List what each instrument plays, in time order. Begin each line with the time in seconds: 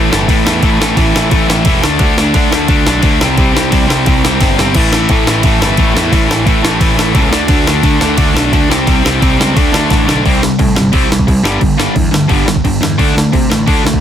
Already playing: distorted electric guitar A2 E3
0.10 picked electric bass G1, distorted electric guitar A2 E3 A3, snare
0.28 picked electric bass A1, distorted electric guitar A2 E3 A3, kick, ride
0.45 picked electric bass E2, distorted electric guitar A2 E3 A3, snare
0.62 picked electric bass A1, distorted electric guitar A2 E3 A3, kick, ride
0.80 picked electric bass A1, distorted electric guitar A2 E3 A3, snare
0.96 picked electric bass A1, distorted electric guitar A2 E3 A3, kick, ride
1.14 picked electric bass A1, distorted electric guitar A2 E3 A3, snare
1.30 picked electric bass A1, distorted electric guitar A2 E3 A3, kick, ride
1.48 picked electric bass A1, distorted electric guitar A2 E3 A3, snare
1.65 picked electric bass E1, distorted electric guitar A2 E3 A3, kick, ride
1.83 picked electric bass D2, distorted electric guitar D3 A3 D4, snare
1.99 picked electric bass D2, distorted electric guitar D3 A3 D4, kick, ride
2.18 distorted electric guitar D3 A3 D4, snare
2.34 picked electric bass D3, distorted electric guitar D3 A3 D4, kick, ride
2.51 picked electric bass D2, distorted electric guitar D3 A3 D4, snare
2.68 picked electric bass D2, distorted electric guitar D3 A3 D4, kick, ride
2.86 picked electric bass B1, distorted electric guitar D3 A3 D4, snare
3.02 picked electric bass D2, distorted electric guitar D3 A3 D4, kick, ride
3.21 picked electric bass C2, distorted electric guitar C3 G3 C4, snare
3.37 picked electric bass C2, distorted electric guitar C3 G3 C4, kick, ride
3.53 picked electric bass C2, distorted electric guitar C3 G3 C4, snare
3.71 picked electric bass C2, distorted electric guitar C3 G3 C4, kick, ride
3.87 picked electric bass C2, distorted electric guitar C3 G3 C4, snare
4.06 picked electric bass C2, distorted electric guitar C3 G3 C4, kick, ride
4.24 picked electric bass C2, distorted electric guitar C3 G3 C4, snare
4.40 picked electric bass G1, distorted electric guitar C3 G3 C4, kick, snare, ride
4.58 picked electric bass G1, distorted electric guitar C3 G3 C4, snare
4.74 picked electric bass A1, distorted electric guitar A2 E3 A3, kick, crash
4.93 distorted electric guitar A2 E3 A3, snare
5.09 distorted electric guitar A2 E3 A3, picked electric bass A2, kick, ride
5.27 picked electric bass A1, distorted electric guitar A2 E3 A3, snare
5.43 picked electric bass A1, distorted electric guitar A2 E3 A3, kick, ride
5.61 picked electric bass G1, distorted electric guitar A2 E3 A3, snare
5.77 picked electric bass A1, distorted electric guitar A2 E3 A3, kick, ride
5.94 picked electric bass E2, distorted electric guitar A2 E3 A3, snare
6.12 picked electric bass A1, distorted electric guitar A2 E3 A3, kick, ride
6.28 picked electric bass A1, distorted electric guitar A2 E3 A3, snare
6.46 picked electric bass A1, distorted electric guitar A2 E3 A3, kick, ride
6.62 picked electric bass A1, distorted electric guitar A2 E3 A3, snare
6.80 picked electric bass A1, distorted electric guitar A2 E3 A3, kick, ride
6.97 picked electric bass A1, distorted electric guitar A2 E3 A3, snare
7.14 picked electric bass C#2, distorted electric guitar A2 E3 A3, kick, ride
7.31 picked electric bass D2, distorted electric guitar D3 A3 D4, snare
7.48 picked electric bass D2, distorted electric guitar D3 A3 D4, kick, ride
7.67 distorted electric guitar D3 A3 D4, snare
7.83 picked electric bass D3, distorted electric guitar D3 A3 D4, kick, ride
8.01 picked electric bass D2, distorted electric guitar D3 A3 D4, snare
8.16 picked electric bass D2, distorted electric guitar D3 A3 D4, kick, ride
8.34 picked electric bass B1, distorted electric guitar D3 A3 D4, snare
8.53 picked electric bass D2, distorted electric guitar D3 A3 D4, kick, ride
8.69 picked electric bass C2, distorted electric guitar C3 G3 C4, snare
8.86 picked electric bass C2, distorted electric guitar C3 G3 C4, kick, ride
9.03 picked electric bass C2, distorted electric guitar C3 G3 C4, snare
9.20 picked electric bass C2, distorted electric guitar C3 G3 C4, kick, ride
9.37 picked electric bass C#2, distorted electric guitar C3 G3 C4, snare
9.55 picked electric bass D2, distorted electric guitar D3 A3 D4, kick, ride
9.72 picked electric bass D2, distorted electric guitar D3 A3 D4, snare
9.90 picked electric bass A1, distorted electric guitar D3 A3 D4, kick, snare, ride
10.07 picked electric bass B1, distorted electric guitar D3 A3 D4, snare
10.25 picked electric bass C2, distorted electric guitar C3 G3 C4, kick, crash
10.42 distorted electric guitar C3 G3, snare
10.59 picked electric bass A2, distorted electric guitar C3 G3, kick, crash
10.75 picked electric bass G1, distorted electric guitar C3 G3, snare
10.92 picked electric bass C2, distorted electric guitar C3 G3 C4, kick, crash
11.10 picked electric bass C2, distorted electric guitar C3 G3, snare
11.19 kick
11.27 picked electric bass C2, distorted electric guitar C3 G3, kick, crash
11.43 picked electric bass G1, distorted electric guitar G2 D3 G3, snare
11.60 picked electric bass G1, distorted electric guitar G2 D3, kick, crash
11.78 distorted electric guitar G2 D3 G3, snare
11.95 picked electric bass E2, distorted electric guitar G2 D3, kick, crash
12.11 picked electric bass D2, distorted electric guitar G2 D3, snare
12.28 picked electric bass G1, distorted electric guitar G2 D3 G3, kick, crash
12.46 picked electric bass G1, distorted electric guitar G2 D3, snare
12.56 kick
12.64 picked electric bass G1, distorted electric guitar G2 D3, kick, crash
12.81 picked electric bass E2, distorted electric guitar G2 D3, snare
12.98 picked electric bass D2, distorted electric guitar D3 A3 D4, kick, crash
13.14 distorted electric guitar D3 A3, snare
13.32 picked electric bass C3, distorted electric guitar D3 A3, kick, crash
13.50 picked electric bass A1, distorted electric guitar D3 A3, snare
13.66 picked electric bass D2, distorted electric guitar D3 A3 D4, kick, crash
13.84 picked electric bass D2, distorted electric guitar D3 A3, snare
13.94 kick